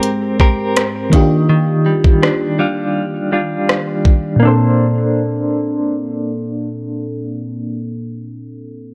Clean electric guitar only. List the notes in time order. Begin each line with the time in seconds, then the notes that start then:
Already playing: G#3 C4 G4 A#4
0.40 C4 G4 A#4
1.13 D#3
1.49 D#3
1.86 G3
2.23 D4
2.59 G3 D4 F4
3.32 G3 D4 F4
4.40 A#3 D4
4.45 A4 C5